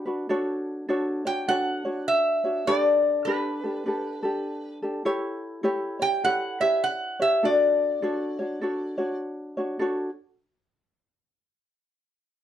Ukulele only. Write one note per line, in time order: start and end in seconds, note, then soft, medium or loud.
0.05 0.28 D4 soft
0.05 0.29 F#4 soft
0.05 0.29 B4 medium
0.29 0.88 D4 medium
0.29 0.88 F#4 medium
0.29 0.88 A4 medium
0.29 0.89 C#5 loud
0.89 1.25 D4 medium
0.89 1.25 F#4 medium
0.89 1.25 A4 medium
0.89 1.24 C#5 medium
1.25 1.47 D4 soft
1.25 1.48 F#4 soft
1.25 1.48 C#5 soft
1.48 1.85 D4 medium
1.48 1.84 F#4 medium
1.48 1.85 A4 medium
1.48 1.84 C#5 medium
1.85 2.45 D4 soft
1.85 2.44 F#4 medium
1.85 2.43 C#5 medium
2.44 2.66 D4 soft
2.44 2.67 F#4 soft
2.44 2.67 C#5 medium
2.67 3.26 D4 medium
2.67 3.27 G4 medium
2.67 3.28 A4 medium
2.67 3.26 B4 medium
3.27 3.63 D4 medium
3.27 3.63 G4 medium
3.27 3.62 A4 medium
3.27 3.63 B4 medium
3.63 3.85 D4 soft
3.63 3.85 G4 soft
3.63 3.86 A4 soft
3.86 4.22 D4 medium
3.86 4.23 G4 medium
3.86 4.21 A4 medium
3.86 4.22 B4 medium
4.23 4.83 D4 medium
4.23 4.83 G4 medium
4.23 4.82 A4 medium
4.82 5.05 D4 medium
4.82 5.05 G4 medium
4.82 5.04 A4 medium
5.05 5.62 E4 medium
5.05 5.63 G4 loud
5.05 5.63 A4 medium
5.05 5.64 C#5 loud
5.63 6.00 E4 medium
5.63 6.00 G4 medium
5.63 6.00 A4 medium
5.63 5.98 C#5 medium
5.99 6.23 E4 soft
5.99 6.24 G4 soft
5.99 6.23 C#5 soft
6.24 6.60 E4 medium
6.24 6.61 G4 medium
6.24 6.60 A4 medium
6.24 6.59 C#5 medium
6.60 7.20 E4 soft
6.60 7.19 G4 medium
6.60 7.19 C#5 medium
7.20 7.43 E4 soft
7.20 7.43 G4 soft
7.20 7.42 C#5 medium
7.43 8.02 D4 medium
7.43 8.03 F#4 medium
7.43 8.02 A4 medium
8.02 8.38 D4 medium
8.02 8.39 F#4 medium
8.02 8.38 A4 medium
8.02 8.38 C#5 medium
8.39 8.61 D4 soft
8.39 8.62 F#4 soft
8.39 8.61 C#5 medium
8.61 8.98 D4 medium
8.61 8.97 F#4 medium
8.61 8.97 A4 medium
8.61 8.96 C#5 medium
8.98 9.58 D4 medium
8.98 9.58 F#4 medium
8.98 9.57 C#5 medium
9.57 9.79 D4 soft
9.57 9.80 F#4 medium
9.57 9.80 C#5 medium
9.79 10.09 D4 medium
9.79 10.09 F#4 medium
9.79 10.08 A4 medium
9.79 10.10 C#5 medium